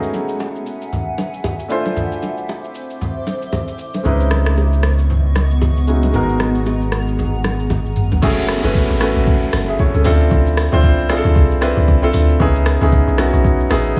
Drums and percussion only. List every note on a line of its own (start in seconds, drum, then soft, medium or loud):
0.03 shaker medium
0.14 low bongo soft
0.14 shaker medium
0.29 shaker medium
0.40 high bongo medium
0.40 shaker medium
0.56 shaker soft
0.66 shaker medium
0.82 shaker medium
0.93 low conga medium
0.93 shaker medium
1.18 low bongo medium
1.18 shaker medium
1.34 shaker soft
1.44 high bongo medium
1.44 low conga medium
1.44 shaker medium
1.59 shaker medium
1.70 shaker medium
1.85 low bongo medium
1.85 shaker medium
1.97 low conga medium
1.97 shaker medium
2.12 shaker medium
2.23 low bongo soft
2.23 shaker medium
2.37 shaker medium
2.49 high bongo medium
2.49 shaker medium
2.64 shaker soft
2.75 shaker medium
2.90 shaker medium
3.01 low conga medium
3.01 shaker medium
3.27 low bongo medium
3.27 shaker medium
3.42 shaker soft
3.53 high bongo medium
3.53 low conga medium
3.53 shaker medium
3.68 shaker medium
3.78 shaker medium
3.94 low bongo medium
3.94 shaker medium
4.05 low conga medium
4.05 shaker medium
4.20 shaker medium
4.31 cross-stick medium
4.31 low bongo soft
4.31 shaker medium
4.46 cross-stick loud
4.46 shaker medium
4.57 high bongo medium
4.57 shaker medium
4.73 shaker soft
4.83 cross-stick loud
4.83 shaker medium
4.99 shaker medium
5.10 low conga medium
5.10 shaker medium
5.35 cross-stick medium
5.35 low bongo medium
5.35 shaker medium
5.51 shaker soft
5.62 high bongo medium
5.62 low conga medium
5.62 shaker medium
5.77 shaker medium
5.87 shaker medium
6.03 low bongo medium
6.03 shaker medium
6.14 low conga medium
6.14 shaker medium
6.29 shaker medium
6.40 cross-stick medium
6.40 low bongo soft
6.40 shaker medium
6.55 shaker medium
6.66 high bongo medium
6.66 shaker medium
6.82 shaker medium
6.92 cross-stick medium
6.92 shaker medium
7.08 shaker medium
7.19 low conga medium
7.19 shaker medium
7.44 cross-stick medium
7.44 low bongo medium
7.44 shaker medium
7.60 shaker soft
7.70 high tom medium
7.70 high bongo medium
7.70 low conga medium
7.70 shaker medium
7.86 shaker medium
7.96 mid tom medium
7.96 shaker medium
8.11 floor tom medium
8.11 low bongo medium
8.11 shaker medium
8.22 kick loud
8.22 crash loud
8.22 shaker medium
8.38 shaker medium
8.48 cross-stick loud
8.48 open hi-hat medium
8.48 shaker medium
8.63 shaker medium
8.75 kick loud
8.75 shaker medium
8.90 shaker medium
9.01 cross-stick loud
9.01 open hi-hat medium
9.01 shaker medium
9.16 shaker medium
9.27 kick loud
9.27 shaker medium
9.42 shaker medium
9.53 cross-stick medium
9.53 open hi-hat medium
9.53 shaker loud
9.68 shaker soft
9.79 kick loud
9.79 shaker medium
9.94 shaker medium
10.04 open hi-hat medium
10.04 shaker loud
10.20 shaker medium
10.31 kick loud
10.31 shaker medium
10.47 shaker medium
10.57 cross-stick loud
10.57 open hi-hat soft
10.57 shaker medium
10.72 shaker medium
10.83 kick medium
10.83 shaker medium
10.99 shaker medium
11.10 cross-stick loud
11.10 open hi-hat medium
11.10 shaker medium
11.25 shaker medium
11.36 kick loud
11.36 shaker medium
11.51 shaker medium
11.62 cross-stick loud
11.62 open hi-hat medium
11.62 shaker medium
11.77 shaker soft
11.88 kick medium
11.88 shaker medium
12.03 shaker medium
12.13 open hi-hat medium
12.13 shaker loud
12.29 shaker medium
12.40 kick loud
12.40 shaker medium
12.55 shaker medium
12.66 cross-stick loud
12.66 open hi-hat soft
12.66 shaker medium
12.81 shaker medium
12.92 kick loud
12.92 shaker medium
13.08 shaker medium
13.18 cross-stick loud
13.18 open hi-hat medium
13.18 shaker medium
13.34 shaker medium
13.44 kick loud
13.44 shaker medium
13.60 shaker medium
13.71 cross-stick medium
13.71 open hi-hat medium
13.71 shaker medium
13.86 shaker soft
13.97 kick medium
13.97 shaker medium